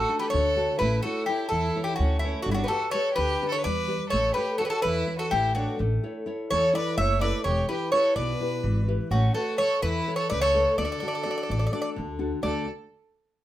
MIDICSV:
0, 0, Header, 1, 5, 480
1, 0, Start_track
1, 0, Key_signature, 2, "major"
1, 0, Tempo, 474684
1, 825, Time_signature, 7, 3, 24, 8
1, 13594, End_track
2, 0, Start_track
2, 0, Title_t, "Bouzouki"
2, 0, Program_c, 0, 25
2, 0, Note_on_c, 0, 69, 89
2, 191, Note_off_c, 0, 69, 0
2, 196, Note_on_c, 0, 71, 83
2, 299, Note_off_c, 0, 71, 0
2, 303, Note_on_c, 0, 73, 90
2, 769, Note_off_c, 0, 73, 0
2, 795, Note_on_c, 0, 71, 92
2, 1032, Note_off_c, 0, 71, 0
2, 1037, Note_on_c, 0, 69, 88
2, 1274, Note_on_c, 0, 67, 89
2, 1298, Note_off_c, 0, 69, 0
2, 1503, Note_on_c, 0, 69, 96
2, 1511, Note_off_c, 0, 67, 0
2, 1856, Note_off_c, 0, 69, 0
2, 1859, Note_on_c, 0, 67, 83
2, 1975, Note_off_c, 0, 67, 0
2, 1979, Note_on_c, 0, 66, 84
2, 2214, Note_off_c, 0, 66, 0
2, 2218, Note_on_c, 0, 64, 87
2, 2448, Note_off_c, 0, 64, 0
2, 2452, Note_on_c, 0, 66, 92
2, 2531, Note_off_c, 0, 66, 0
2, 2542, Note_on_c, 0, 64, 73
2, 2569, Note_off_c, 0, 64, 0
2, 2573, Note_on_c, 0, 66, 86
2, 2666, Note_on_c, 0, 71, 60
2, 2707, Note_off_c, 0, 71, 0
2, 2708, Note_off_c, 0, 66, 0
2, 2711, Note_on_c, 0, 69, 95
2, 2942, Note_off_c, 0, 69, 0
2, 2946, Note_on_c, 0, 73, 100
2, 3186, Note_off_c, 0, 73, 0
2, 3191, Note_on_c, 0, 71, 98
2, 3540, Note_off_c, 0, 71, 0
2, 3562, Note_on_c, 0, 73, 97
2, 3677, Note_off_c, 0, 73, 0
2, 3681, Note_on_c, 0, 74, 106
2, 4137, Note_off_c, 0, 74, 0
2, 4150, Note_on_c, 0, 73, 92
2, 4383, Note_off_c, 0, 73, 0
2, 4387, Note_on_c, 0, 71, 84
2, 4629, Note_off_c, 0, 71, 0
2, 4633, Note_on_c, 0, 69, 93
2, 4697, Note_off_c, 0, 69, 0
2, 4701, Note_on_c, 0, 71, 74
2, 4748, Note_off_c, 0, 71, 0
2, 4752, Note_on_c, 0, 69, 87
2, 4871, Note_off_c, 0, 69, 0
2, 4875, Note_on_c, 0, 71, 100
2, 5245, Note_off_c, 0, 71, 0
2, 5249, Note_on_c, 0, 69, 88
2, 5369, Note_on_c, 0, 67, 93
2, 5378, Note_off_c, 0, 69, 0
2, 5606, Note_off_c, 0, 67, 0
2, 5610, Note_on_c, 0, 66, 74
2, 5838, Note_off_c, 0, 66, 0
2, 6578, Note_on_c, 0, 73, 103
2, 6802, Note_off_c, 0, 73, 0
2, 6826, Note_on_c, 0, 74, 103
2, 7046, Note_off_c, 0, 74, 0
2, 7054, Note_on_c, 0, 76, 107
2, 7280, Note_off_c, 0, 76, 0
2, 7294, Note_on_c, 0, 74, 95
2, 7520, Note_off_c, 0, 74, 0
2, 7525, Note_on_c, 0, 73, 80
2, 7754, Note_off_c, 0, 73, 0
2, 7772, Note_on_c, 0, 71, 77
2, 7998, Note_off_c, 0, 71, 0
2, 8006, Note_on_c, 0, 73, 91
2, 8235, Note_off_c, 0, 73, 0
2, 8249, Note_on_c, 0, 74, 85
2, 8933, Note_off_c, 0, 74, 0
2, 9216, Note_on_c, 0, 66, 77
2, 9445, Note_off_c, 0, 66, 0
2, 9449, Note_on_c, 0, 69, 85
2, 9677, Note_off_c, 0, 69, 0
2, 9688, Note_on_c, 0, 73, 96
2, 9916, Note_off_c, 0, 73, 0
2, 9934, Note_on_c, 0, 71, 100
2, 10270, Note_off_c, 0, 71, 0
2, 10274, Note_on_c, 0, 73, 91
2, 10397, Note_off_c, 0, 73, 0
2, 10412, Note_on_c, 0, 74, 99
2, 10527, Note_off_c, 0, 74, 0
2, 10531, Note_on_c, 0, 73, 105
2, 10869, Note_off_c, 0, 73, 0
2, 10900, Note_on_c, 0, 74, 84
2, 10957, Note_off_c, 0, 74, 0
2, 10969, Note_on_c, 0, 74, 62
2, 11030, Note_off_c, 0, 74, 0
2, 11042, Note_on_c, 0, 74, 69
2, 11112, Note_off_c, 0, 74, 0
2, 11124, Note_on_c, 0, 74, 60
2, 11190, Note_off_c, 0, 74, 0
2, 11202, Note_on_c, 0, 74, 65
2, 11262, Note_off_c, 0, 74, 0
2, 11274, Note_on_c, 0, 74, 59
2, 11346, Note_off_c, 0, 74, 0
2, 11360, Note_on_c, 0, 74, 60
2, 11421, Note_off_c, 0, 74, 0
2, 11433, Note_on_c, 0, 74, 57
2, 11491, Note_off_c, 0, 74, 0
2, 11503, Note_on_c, 0, 74, 63
2, 11547, Note_off_c, 0, 74, 0
2, 11559, Note_on_c, 0, 74, 52
2, 11630, Note_off_c, 0, 74, 0
2, 11642, Note_on_c, 0, 74, 68
2, 11711, Note_off_c, 0, 74, 0
2, 11723, Note_on_c, 0, 74, 55
2, 11784, Note_off_c, 0, 74, 0
2, 11796, Note_on_c, 0, 74, 69
2, 11848, Note_off_c, 0, 74, 0
2, 11860, Note_on_c, 0, 74, 67
2, 11936, Note_off_c, 0, 74, 0
2, 11948, Note_on_c, 0, 74, 80
2, 12023, Note_off_c, 0, 74, 0
2, 12568, Note_on_c, 0, 74, 76
2, 12797, Note_off_c, 0, 74, 0
2, 13594, End_track
3, 0, Start_track
3, 0, Title_t, "Nylon-string guitar"
3, 0, Program_c, 1, 24
3, 0, Note_on_c, 1, 57, 69
3, 92, Note_on_c, 1, 62, 49
3, 96, Note_on_c, 1, 66, 43
3, 98, Note_on_c, 1, 69, 52
3, 327, Note_off_c, 1, 57, 0
3, 339, Note_on_c, 1, 50, 75
3, 481, Note_off_c, 1, 62, 0
3, 484, Note_off_c, 1, 66, 0
3, 484, Note_off_c, 1, 69, 0
3, 567, Note_on_c, 1, 62, 48
3, 572, Note_on_c, 1, 66, 49
3, 574, Note_on_c, 1, 69, 58
3, 766, Note_off_c, 1, 62, 0
3, 769, Note_off_c, 1, 66, 0
3, 769, Note_off_c, 1, 69, 0
3, 807, Note_off_c, 1, 50, 0
3, 817, Note_on_c, 1, 57, 70
3, 1060, Note_on_c, 1, 69, 42
3, 1062, Note_on_c, 1, 64, 49
3, 1065, Note_on_c, 1, 73, 55
3, 1286, Note_off_c, 1, 57, 0
3, 1290, Note_off_c, 1, 64, 0
3, 1295, Note_off_c, 1, 69, 0
3, 1295, Note_off_c, 1, 73, 0
3, 1302, Note_on_c, 1, 64, 53
3, 1306, Note_on_c, 1, 69, 48
3, 1308, Note_on_c, 1, 73, 59
3, 1538, Note_on_c, 1, 52, 64
3, 1687, Note_off_c, 1, 64, 0
3, 1689, Note_off_c, 1, 73, 0
3, 1690, Note_off_c, 1, 69, 0
3, 1777, Note_on_c, 1, 64, 49
3, 1781, Note_on_c, 1, 69, 44
3, 1790, Note_on_c, 1, 73, 59
3, 2006, Note_off_c, 1, 52, 0
3, 2030, Note_on_c, 1, 57, 72
3, 2163, Note_off_c, 1, 64, 0
3, 2167, Note_off_c, 1, 69, 0
3, 2169, Note_off_c, 1, 73, 0
3, 2262, Note_on_c, 1, 64, 55
3, 2270, Note_on_c, 1, 69, 46
3, 2271, Note_on_c, 1, 73, 60
3, 2455, Note_off_c, 1, 64, 0
3, 2459, Note_off_c, 1, 73, 0
3, 2460, Note_off_c, 1, 69, 0
3, 2492, Note_off_c, 1, 57, 0
3, 2510, Note_on_c, 1, 55, 68
3, 2731, Note_off_c, 1, 55, 0
3, 2735, Note_on_c, 1, 67, 52
3, 2735, Note_on_c, 1, 71, 43
3, 2743, Note_on_c, 1, 74, 50
3, 2960, Note_off_c, 1, 67, 0
3, 2962, Note_off_c, 1, 71, 0
3, 2970, Note_off_c, 1, 74, 0
3, 2972, Note_on_c, 1, 67, 53
3, 2977, Note_on_c, 1, 71, 46
3, 2982, Note_on_c, 1, 74, 59
3, 3209, Note_on_c, 1, 50, 69
3, 3360, Note_off_c, 1, 67, 0
3, 3361, Note_off_c, 1, 71, 0
3, 3366, Note_off_c, 1, 74, 0
3, 3456, Note_on_c, 1, 67, 50
3, 3463, Note_on_c, 1, 71, 48
3, 3468, Note_on_c, 1, 74, 54
3, 3681, Note_off_c, 1, 50, 0
3, 3700, Note_on_c, 1, 55, 69
3, 3843, Note_off_c, 1, 67, 0
3, 3845, Note_off_c, 1, 71, 0
3, 3849, Note_off_c, 1, 74, 0
3, 3921, Note_on_c, 1, 67, 55
3, 3926, Note_on_c, 1, 71, 47
3, 3935, Note_on_c, 1, 74, 56
3, 4121, Note_off_c, 1, 67, 0
3, 4125, Note_off_c, 1, 71, 0
3, 4127, Note_off_c, 1, 74, 0
3, 4166, Note_off_c, 1, 55, 0
3, 4177, Note_on_c, 1, 57, 68
3, 4409, Note_on_c, 1, 69, 49
3, 4417, Note_on_c, 1, 71, 43
3, 4419, Note_on_c, 1, 73, 57
3, 4641, Note_off_c, 1, 69, 0
3, 4643, Note_off_c, 1, 71, 0
3, 4644, Note_off_c, 1, 57, 0
3, 4645, Note_off_c, 1, 73, 0
3, 4652, Note_on_c, 1, 69, 55
3, 4656, Note_on_c, 1, 71, 50
3, 4661, Note_on_c, 1, 73, 59
3, 4901, Note_on_c, 1, 52, 66
3, 5040, Note_off_c, 1, 69, 0
3, 5041, Note_off_c, 1, 71, 0
3, 5042, Note_off_c, 1, 73, 0
3, 5124, Note_on_c, 1, 69, 46
3, 5130, Note_on_c, 1, 71, 45
3, 5134, Note_on_c, 1, 73, 52
3, 5366, Note_off_c, 1, 52, 0
3, 5377, Note_on_c, 1, 57, 72
3, 5514, Note_off_c, 1, 69, 0
3, 5518, Note_off_c, 1, 71, 0
3, 5519, Note_off_c, 1, 73, 0
3, 5611, Note_on_c, 1, 69, 51
3, 5617, Note_on_c, 1, 71, 45
3, 5620, Note_on_c, 1, 73, 55
3, 5807, Note_off_c, 1, 69, 0
3, 5811, Note_off_c, 1, 71, 0
3, 5812, Note_off_c, 1, 73, 0
3, 5844, Note_off_c, 1, 57, 0
3, 5855, Note_on_c, 1, 57, 68
3, 6103, Note_on_c, 1, 69, 46
3, 6105, Note_on_c, 1, 64, 47
3, 6108, Note_on_c, 1, 73, 54
3, 6317, Note_off_c, 1, 64, 0
3, 6323, Note_off_c, 1, 57, 0
3, 6325, Note_off_c, 1, 69, 0
3, 6326, Note_off_c, 1, 73, 0
3, 6329, Note_on_c, 1, 64, 58
3, 6336, Note_on_c, 1, 69, 49
3, 6340, Note_on_c, 1, 73, 61
3, 6576, Note_on_c, 1, 52, 64
3, 6717, Note_off_c, 1, 64, 0
3, 6722, Note_off_c, 1, 69, 0
3, 6723, Note_off_c, 1, 73, 0
3, 6807, Note_on_c, 1, 69, 41
3, 6809, Note_on_c, 1, 64, 52
3, 6813, Note_on_c, 1, 73, 55
3, 7043, Note_off_c, 1, 52, 0
3, 7049, Note_on_c, 1, 57, 68
3, 7195, Note_off_c, 1, 64, 0
3, 7196, Note_off_c, 1, 69, 0
3, 7200, Note_off_c, 1, 73, 0
3, 7295, Note_on_c, 1, 64, 50
3, 7303, Note_on_c, 1, 69, 44
3, 7303, Note_on_c, 1, 73, 54
3, 7489, Note_off_c, 1, 64, 0
3, 7493, Note_off_c, 1, 73, 0
3, 7494, Note_off_c, 1, 69, 0
3, 7519, Note_off_c, 1, 57, 0
3, 7546, Note_on_c, 1, 52, 67
3, 7777, Note_on_c, 1, 64, 49
3, 7778, Note_on_c, 1, 67, 46
3, 7784, Note_on_c, 1, 71, 56
3, 8008, Note_off_c, 1, 52, 0
3, 8008, Note_off_c, 1, 64, 0
3, 8015, Note_off_c, 1, 67, 0
3, 8020, Note_on_c, 1, 64, 54
3, 8022, Note_off_c, 1, 71, 0
3, 8027, Note_on_c, 1, 67, 51
3, 8034, Note_on_c, 1, 71, 61
3, 8267, Note_on_c, 1, 47, 70
3, 8403, Note_off_c, 1, 64, 0
3, 8408, Note_off_c, 1, 67, 0
3, 8412, Note_off_c, 1, 71, 0
3, 8495, Note_on_c, 1, 64, 49
3, 8503, Note_on_c, 1, 67, 43
3, 8507, Note_on_c, 1, 71, 54
3, 8728, Note_off_c, 1, 47, 0
3, 8730, Note_on_c, 1, 52, 72
3, 8881, Note_off_c, 1, 64, 0
3, 8884, Note_off_c, 1, 67, 0
3, 8888, Note_off_c, 1, 71, 0
3, 8979, Note_on_c, 1, 67, 44
3, 8984, Note_on_c, 1, 71, 58
3, 8986, Note_on_c, 1, 64, 51
3, 9171, Note_off_c, 1, 67, 0
3, 9174, Note_off_c, 1, 64, 0
3, 9174, Note_off_c, 1, 71, 0
3, 9200, Note_off_c, 1, 52, 0
3, 9221, Note_on_c, 1, 57, 69
3, 9447, Note_on_c, 1, 69, 53
3, 9453, Note_on_c, 1, 71, 41
3, 9459, Note_on_c, 1, 73, 55
3, 9686, Note_off_c, 1, 57, 0
3, 9687, Note_off_c, 1, 69, 0
3, 9690, Note_off_c, 1, 71, 0
3, 9695, Note_off_c, 1, 73, 0
3, 9698, Note_on_c, 1, 69, 59
3, 9704, Note_on_c, 1, 71, 47
3, 9707, Note_on_c, 1, 73, 59
3, 9938, Note_on_c, 1, 52, 72
3, 10083, Note_off_c, 1, 69, 0
3, 10085, Note_off_c, 1, 71, 0
3, 10088, Note_off_c, 1, 73, 0
3, 10187, Note_on_c, 1, 69, 49
3, 10189, Note_on_c, 1, 71, 44
3, 10195, Note_on_c, 1, 73, 56
3, 10404, Note_off_c, 1, 52, 0
3, 10424, Note_on_c, 1, 57, 72
3, 10568, Note_off_c, 1, 71, 0
3, 10569, Note_off_c, 1, 69, 0
3, 10572, Note_off_c, 1, 73, 0
3, 10662, Note_on_c, 1, 69, 52
3, 10666, Note_on_c, 1, 71, 44
3, 10676, Note_on_c, 1, 73, 56
3, 10853, Note_off_c, 1, 69, 0
3, 10855, Note_off_c, 1, 71, 0
3, 10861, Note_off_c, 1, 73, 0
3, 10887, Note_off_c, 1, 57, 0
3, 10915, Note_on_c, 1, 50, 70
3, 11143, Note_on_c, 1, 62, 44
3, 11149, Note_on_c, 1, 66, 45
3, 11149, Note_on_c, 1, 69, 52
3, 11363, Note_off_c, 1, 62, 0
3, 11372, Note_off_c, 1, 66, 0
3, 11373, Note_off_c, 1, 50, 0
3, 11373, Note_off_c, 1, 69, 0
3, 11375, Note_on_c, 1, 62, 55
3, 11383, Note_on_c, 1, 66, 50
3, 11388, Note_on_c, 1, 69, 60
3, 11618, Note_on_c, 1, 57, 65
3, 11761, Note_off_c, 1, 62, 0
3, 11766, Note_off_c, 1, 66, 0
3, 11767, Note_off_c, 1, 69, 0
3, 11852, Note_on_c, 1, 62, 48
3, 11858, Note_on_c, 1, 66, 45
3, 11862, Note_on_c, 1, 69, 53
3, 12085, Note_off_c, 1, 57, 0
3, 12098, Note_on_c, 1, 50, 72
3, 12239, Note_off_c, 1, 62, 0
3, 12243, Note_off_c, 1, 66, 0
3, 12245, Note_off_c, 1, 69, 0
3, 12324, Note_on_c, 1, 62, 51
3, 12328, Note_on_c, 1, 66, 45
3, 12332, Note_on_c, 1, 69, 53
3, 12522, Note_off_c, 1, 62, 0
3, 12525, Note_off_c, 1, 66, 0
3, 12526, Note_off_c, 1, 69, 0
3, 12553, Note_off_c, 1, 50, 0
3, 12564, Note_on_c, 1, 50, 51
3, 12570, Note_on_c, 1, 57, 50
3, 12571, Note_on_c, 1, 62, 54
3, 12583, Note_on_c, 1, 66, 51
3, 12589, Note_on_c, 1, 69, 61
3, 12795, Note_off_c, 1, 50, 0
3, 12797, Note_off_c, 1, 57, 0
3, 12798, Note_off_c, 1, 62, 0
3, 12805, Note_off_c, 1, 66, 0
3, 12808, Note_off_c, 1, 69, 0
3, 13594, End_track
4, 0, Start_track
4, 0, Title_t, "Violin"
4, 0, Program_c, 2, 40
4, 0, Note_on_c, 2, 66, 87
4, 188, Note_off_c, 2, 66, 0
4, 210, Note_on_c, 2, 67, 69
4, 295, Note_off_c, 2, 67, 0
4, 301, Note_on_c, 2, 69, 80
4, 768, Note_off_c, 2, 69, 0
4, 802, Note_on_c, 2, 64, 77
4, 1036, Note_off_c, 2, 64, 0
4, 1050, Note_on_c, 2, 66, 73
4, 1280, Note_off_c, 2, 66, 0
4, 1290, Note_on_c, 2, 64, 77
4, 1514, Note_off_c, 2, 64, 0
4, 1520, Note_on_c, 2, 64, 87
4, 1866, Note_off_c, 2, 64, 0
4, 1882, Note_on_c, 2, 64, 76
4, 2003, Note_off_c, 2, 64, 0
4, 2009, Note_on_c, 2, 61, 76
4, 2239, Note_off_c, 2, 61, 0
4, 2247, Note_on_c, 2, 61, 70
4, 2465, Note_off_c, 2, 61, 0
4, 2471, Note_on_c, 2, 62, 74
4, 2542, Note_off_c, 2, 62, 0
4, 2570, Note_on_c, 2, 61, 60
4, 2583, Note_on_c, 2, 62, 83
4, 2590, Note_off_c, 2, 61, 0
4, 2680, Note_off_c, 2, 62, 0
4, 2686, Note_on_c, 2, 67, 59
4, 2700, Note_on_c, 2, 66, 75
4, 2707, Note_off_c, 2, 67, 0
4, 2933, Note_off_c, 2, 66, 0
4, 2939, Note_on_c, 2, 69, 85
4, 3162, Note_off_c, 2, 69, 0
4, 3168, Note_on_c, 2, 67, 99
4, 3521, Note_off_c, 2, 67, 0
4, 3527, Note_on_c, 2, 69, 79
4, 3635, Note_off_c, 2, 69, 0
4, 3641, Note_on_c, 2, 71, 90
4, 4115, Note_off_c, 2, 71, 0
4, 4137, Note_on_c, 2, 69, 83
4, 4381, Note_off_c, 2, 69, 0
4, 4394, Note_on_c, 2, 67, 78
4, 4630, Note_off_c, 2, 67, 0
4, 4647, Note_on_c, 2, 66, 74
4, 4709, Note_off_c, 2, 66, 0
4, 4715, Note_on_c, 2, 67, 62
4, 4757, Note_off_c, 2, 67, 0
4, 4763, Note_on_c, 2, 66, 78
4, 4883, Note_off_c, 2, 66, 0
4, 4889, Note_on_c, 2, 64, 95
4, 5229, Note_off_c, 2, 64, 0
4, 5243, Note_on_c, 2, 66, 68
4, 5363, Note_off_c, 2, 66, 0
4, 5390, Note_on_c, 2, 64, 72
4, 5609, Note_off_c, 2, 64, 0
4, 5625, Note_on_c, 2, 62, 67
4, 5846, Note_off_c, 2, 62, 0
4, 6601, Note_on_c, 2, 69, 84
4, 6814, Note_off_c, 2, 69, 0
4, 6848, Note_on_c, 2, 71, 78
4, 7058, Note_off_c, 2, 71, 0
4, 7066, Note_on_c, 2, 73, 88
4, 7286, Note_off_c, 2, 73, 0
4, 7294, Note_on_c, 2, 71, 78
4, 7520, Note_off_c, 2, 71, 0
4, 7542, Note_on_c, 2, 67, 77
4, 7764, Note_off_c, 2, 67, 0
4, 7792, Note_on_c, 2, 67, 69
4, 8009, Note_off_c, 2, 67, 0
4, 8018, Note_on_c, 2, 69, 77
4, 8241, Note_off_c, 2, 69, 0
4, 8250, Note_on_c, 2, 71, 81
4, 8934, Note_off_c, 2, 71, 0
4, 9211, Note_on_c, 2, 61, 74
4, 9438, Note_off_c, 2, 61, 0
4, 9458, Note_on_c, 2, 66, 79
4, 9682, Note_off_c, 2, 66, 0
4, 9695, Note_on_c, 2, 69, 82
4, 9920, Note_off_c, 2, 69, 0
4, 9947, Note_on_c, 2, 64, 91
4, 10278, Note_off_c, 2, 64, 0
4, 10306, Note_on_c, 2, 69, 73
4, 10415, Note_off_c, 2, 69, 0
4, 10430, Note_on_c, 2, 71, 92
4, 10531, Note_off_c, 2, 71, 0
4, 10537, Note_on_c, 2, 69, 79
4, 10873, Note_off_c, 2, 69, 0
4, 10895, Note_on_c, 2, 69, 84
4, 12057, Note_off_c, 2, 69, 0
4, 12572, Note_on_c, 2, 69, 65
4, 12799, Note_off_c, 2, 69, 0
4, 13594, End_track
5, 0, Start_track
5, 0, Title_t, "Upright bass"
5, 0, Program_c, 3, 32
5, 342, Note_on_c, 3, 38, 92
5, 679, Note_off_c, 3, 38, 0
5, 814, Note_on_c, 3, 33, 111
5, 986, Note_off_c, 3, 33, 0
5, 1534, Note_on_c, 3, 40, 91
5, 1705, Note_off_c, 3, 40, 0
5, 2014, Note_on_c, 3, 38, 96
5, 2353, Note_off_c, 3, 38, 0
5, 2490, Note_on_c, 3, 31, 105
5, 2662, Note_off_c, 3, 31, 0
5, 3212, Note_on_c, 3, 38, 88
5, 3383, Note_off_c, 3, 38, 0
5, 3692, Note_on_c, 3, 40, 90
5, 4031, Note_off_c, 3, 40, 0
5, 4172, Note_on_c, 3, 33, 99
5, 4343, Note_off_c, 3, 33, 0
5, 4903, Note_on_c, 3, 40, 90
5, 5070, Note_off_c, 3, 40, 0
5, 5380, Note_on_c, 3, 33, 90
5, 5716, Note_off_c, 3, 33, 0
5, 5865, Note_on_c, 3, 33, 104
5, 6031, Note_off_c, 3, 33, 0
5, 6594, Note_on_c, 3, 40, 90
5, 6757, Note_off_c, 3, 40, 0
5, 7055, Note_on_c, 3, 30, 91
5, 7393, Note_off_c, 3, 30, 0
5, 7539, Note_on_c, 3, 28, 103
5, 7707, Note_off_c, 3, 28, 0
5, 8250, Note_on_c, 3, 35, 93
5, 8421, Note_off_c, 3, 35, 0
5, 8735, Note_on_c, 3, 32, 96
5, 9073, Note_off_c, 3, 32, 0
5, 9209, Note_on_c, 3, 33, 108
5, 9381, Note_off_c, 3, 33, 0
5, 9938, Note_on_c, 3, 40, 89
5, 10106, Note_off_c, 3, 40, 0
5, 10433, Note_on_c, 3, 37, 95
5, 10764, Note_off_c, 3, 37, 0
5, 10901, Note_on_c, 3, 38, 102
5, 11068, Note_off_c, 3, 38, 0
5, 11630, Note_on_c, 3, 33, 90
5, 11794, Note_off_c, 3, 33, 0
5, 12116, Note_on_c, 3, 38, 94
5, 12447, Note_off_c, 3, 38, 0
5, 12573, Note_on_c, 3, 38, 88
5, 12800, Note_off_c, 3, 38, 0
5, 13594, End_track
0, 0, End_of_file